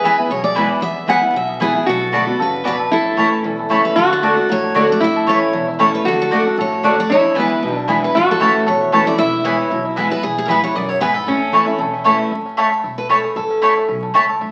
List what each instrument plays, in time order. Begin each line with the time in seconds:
Already playing: upright bass E2, steel-string acoustic guitar E2, five-string banjo B3, resonator guitar played with a steel bar G#4
0.04 steel-string acoustic guitar E3 G#3 B3 E4 B4, mandolin B3 E4 B4 G#5, five-string banjo E4
0.18 steel-string acoustic guitar B3 E4, five-string banjo E4
0.29 upright bass B1, steel-string acoustic guitar B2 C#5, five-string banjo B3
0.44 five-string banjo E4, steel-string acoustic guitar D5
0.55 steel-string acoustic guitar E3 G#3 B3 E4, mandolin B3 E4 B4 G#5, five-string banjo E4
0.70 five-string banjo E4
0.81 upright bass E2, steel-string acoustic guitar E2 E5, five-string banjo B3
0.96 five-string banjo E4
1.06 steel-string acoustic guitar E3 G#3 B3 E4 F#5, mandolin B3 E4 B4 G#5, five-string banjo E4
1.21 steel-string acoustic guitar B3 E4, five-string banjo E4
1.34 upright bass B1, steel-string acoustic guitar B2 E5, five-string banjo E3
1.49 five-string banjo B3
1.60 steel-string acoustic guitar E3 G#3 B3 E4 G#4, mandolin B3 E4 B4 G#5, five-string banjo E4
1.74 five-string banjo B3, steel-string acoustic guitar B3 E4
1.86 upright bass B1, steel-string acoustic guitar B2 A4, five-string banjo D4, resonator guitar played with a steel bar F#4
2.01 five-string banjo F#4
2.12 steel-string acoustic guitar D3 A3 B3 F#4 A4, five-string banjo A3, mandolin B3 F#4 D5 A5
2.27 steel-string acoustic guitar B3 F#4, five-string banjo F#4
2.39 upright bass F#1, steel-string acoustic guitar C#3 B4, five-string banjo A4
2.54 five-string banjo D4
2.64 steel-string acoustic guitar B2 B4, mandolin B3 F#4 D5 A5, five-string banjo F#4
2.79 five-string banjo A4
2.91 upright bass A1, steel-string acoustic guitar A2 A4, five-string banjo A3, resonator guitar played with a steel bar E4
3.06 five-string banjo E4
3.17 upright bass A1, steel-string acoustic guitar E3 A3 C#4 E4, mandolin A3 E4 C#5 A5, five-string banjo A4
3.32 five-string banjo C#4
3.44 upright bass B1, steel-string acoustic guitar E2, five-string banjo E3
3.59 five-string banjo A3
3.69 upright bass C#2, steel-string acoustic guitar E3 A3 C#4 E4, mandolin A3 E4 C#5 A5, five-string banjo E4
3.85 steel-string acoustic guitar B4
3.96 upright bass D2, steel-string acoustic guitar D3 A4, five-string banjo A3, resonator guitar played with a steel bar F#4
4.13 steel-string acoustic guitar A4
4.22 steel-string acoustic guitar D3 A3 D4 F#4, mandolin A3 F#4 D5 F#5, five-string banjo A4
4.36 five-string banjo D4, steel-string acoustic guitar D4 F#4
4.49 upright bass A1, steel-string acoustic guitar A2 C#5, five-string banjo F#3
4.64 five-string banjo D4
4.74 steel-string acoustic guitar D3 A3 D4 F#4, mandolin A3 F#4 D5 F#5, five-string banjo F#4
4.89 five-string banjo A3, steel-string acoustic guitar D4 F#4 D5
5.00 upright bass A1, steel-string acoustic guitar A2 E5, resonator guitar played with a steel bar E4, five-string banjo E4
5.16 five-string banjo A4
5.27 steel-string acoustic guitar E3 A3 C#4 E4 C#5, mandolin A3 E4 C#5 A5, five-string banjo A3
5.42 five-string banjo E3
5.53 upright bass E1, steel-string acoustic guitar E2, five-string banjo A3
5.68 five-string banjo E4
5.79 steel-string acoustic guitar E3 A3 C#4 E4, mandolin A3 E4 C#5 A5, five-string banjo A3
5.94 five-string banjo E4, steel-string acoustic guitar B4
6.05 upright bass D2, steel-string acoustic guitar D3 A4, five-string banjo D4, resonator guitar played with a steel bar F#4
6.20 five-string banjo A3, steel-string acoustic guitar A4
6.31 steel-string acoustic guitar D3 A3 D4 F#4, mandolin A3 F#4 D5 F#5, five-string banjo F#4
6.45 five-string banjo A3, steel-string acoustic guitar D4 F#4
6.58 upright bass A1, steel-string acoustic guitar A2 C#5, five-string banjo A4
6.73 five-string banjo F#4
6.83 steel-string acoustic guitar D3 A3 D4 F#4, mandolin A3 F#4 D5 F#5, five-string banjo A4
6.98 steel-string acoustic guitar D4 F#4 D5, five-string banjo F#4
7.10 upright bass E2, steel-string acoustic guitar E2 C#5, resonator guitar played with a steel bar E4, five-string banjo E4
7.24 five-string banjo E4
7.35 steel-string acoustic guitar E3 G#3 B3 E4, mandolin B3 E4 B4 G#5, five-string banjo B3
7.40 steel-string acoustic guitar B4
7.50 five-string banjo E3
7.62 upright bass B1, steel-string acoustic guitar B2, five-string banjo B3
7.73 resonator guitar played with a steel bar D4
7.77 five-string banjo E4
7.88 steel-string acoustic guitar E3 G#3 B3 E4, mandolin B3 E4 B4 G#5, five-string banjo B3
8.03 five-string banjo E4, steel-string acoustic guitar B4
8.14 upright bass A1, steel-string acoustic guitar A2 A4, five-string banjo C#4, resonator guitar played with a steel bar F#4
8.29 five-string banjo A3, steel-string acoustic guitar A4
8.40 steel-string acoustic guitar E3 A3 C#4 E4, mandolin A3 E4 C#5 A5, five-string banjo E4
8.55 five-string banjo A3
8.66 upright bass E1, steel-string acoustic guitar E2 C#5, five-string banjo A4
8.81 five-string banjo E4
8.92 steel-string acoustic guitar E3 A3 C#4 E4, mandolin A3 E4 C#5 A5, five-string banjo A4
9.06 steel-string acoustic guitar C#4 E4 D5, five-string banjo E4
9.18 upright bass E1, steel-string acoustic guitar E2 E5, five-string banjo E4, resonator guitar played with a steel bar E4
9.33 five-string banjo E4
9.44 steel-string acoustic guitar E3 G#3 B3 E4 C#5, mandolin B3 E4 B4 G#5, five-string banjo E4
9.58 five-string banjo E4
9.71 upright bass B1, steel-string acoustic guitar B2, five-string banjo E4
9.85 five-string banjo E4
9.96 steel-string acoustic guitar E3 G#3 B3 E4, mandolin B3 E4 B4 G#5, five-string banjo B3
10.11 five-string banjo E4, steel-string acoustic guitar B4
10.23 upright bass E1, steel-string acoustic guitar E2 G#4, five-string banjo E4
10.38 steel-string acoustic guitar G#4
10.45 steel-string acoustic guitar E3 G#3 A#4, mandolin B3 E4 B4 G#5, five-string banjo B3
10.50 steel-string acoustic guitar B3 E4 B4
10.64 five-string banjo E3, steel-string acoustic guitar C#5
10.75 upright bass B1, steel-string acoustic guitar F#2 D5, five-string banjo B3
10.89 five-string banjo E4, steel-string acoustic guitar C#5
11.01 steel-string acoustic guitar G#2 B4, mandolin B3 E4 B4 G#5, five-string banjo B3
11.14 five-string banjo E4, steel-string acoustic guitar A4
11.26 upright bass A1, steel-string acoustic guitar A2, five-string banjo C#4, resonator guitar played with a steel bar C#4
11.42 five-string banjo A3
11.52 steel-string acoustic guitar E3 A3 C#4 E4, mandolin A3 E4 C#5 A5, five-string banjo E4
11.66 five-string banjo A3, steel-string acoustic guitar C#4 E4
11.79 upright bass E1, steel-string acoustic guitar E2, five-string banjo A4
11.94 five-string banjo E4
12.04 steel-string acoustic guitar E3 A3 C#4 E4, mandolin A3 E4 C#5 A5, five-string banjo A4
12.20 five-string banjo E4
12.30 upright bass A1, five-string banjo A3
12.46 five-string banjo C#4
12.57 mandolin A3 E4 C#5 A5, five-string banjo A4
12.72 five-string banjo A3
12.84 upright bass E1, five-string banjo E4
12.98 five-string banjo A3, steel-string acoustic guitar B4
13.09 mandolin A3 E4 C#5 A5, five-string banjo C#4, steel-string acoustic guitar A4
13.24 five-string banjo E4, steel-string acoustic guitar G#4
13.36 upright bass A1, five-string banjo A3, steel-string acoustic guitar A4
13.50 five-string banjo C#4
13.62 mandolin A3 E4 C#5 A5, five-string banjo A3
13.77 five-string banjo E4
13.88 upright bass B1, five-string banjo C#4
14.03 five-string banjo A3
14.14 upright bass C#2, mandolin A3 E4 C#5 A5, five-string banjo E4
14.29 five-string banjo A4
14.41 upright bass D2, five-string banjo A3